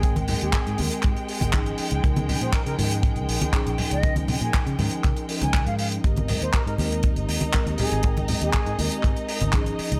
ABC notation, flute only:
X:1
M:4/4
L:1/16
Q:1/4=120
K:Ab
V:1 name="Flute"
A z2 A3 z8 z2 | z3 c B B z8 z e- | e z2 a2 z6 a2 f f z | z3 c B B z8 A2- |
A z2 A3 z8 z2 |]